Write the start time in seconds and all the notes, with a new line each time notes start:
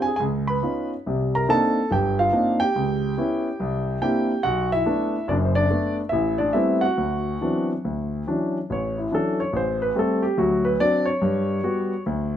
0.02 G#5
0.07 G#4
0.16 C#2 G#4 G#5
0.47 B4 B5
0.63 B3 C#4 D#4 F4
1.06 C2 C3
1.35 A#4 A#5
1.48 A#3 C4 D4 D#4 A4 A5
1.91 G1 G4 G5
2.19 F4 F5
2.33 A#3 C4 D4 D#4
2.60 G4 G5
2.76 C#2
3.18 B3 C#4 E4
3.60 C2
4.01 A#3 C4 D4 E4 G4 G5
4.43 B1 F#4 F#5
4.72 E4 E5
4.86 A3 B3 D4
5.28 F#1 F#2 D4 D5
5.45 C5
5.55 D4 D5
5.70 A3 B3 D4
6.09 A1 E4 E5
6.38 D4 D5
6.53 G3 A3 B3 C4 E4 E5
6.81 F#4 F#5
6.97 D2
7.41 E3 F#3 B3 C4 D4
7.85 D2
8.27 E3 F#3 C#4 D4
8.70 A1 C#5
8.98 E4
9.11 E3 F#3 C#4 D4 A4
9.40 C#5
9.53 A1 C5
9.82 B4
9.95 G3 A3 C4 A4
10.22 G4
10.38 D2 F#3 F#4
10.65 B4
10.80 F#3 C4 D4 D5
11.06 C#5
11.22 G2
11.64 G3 B3 F#4
12.06 D2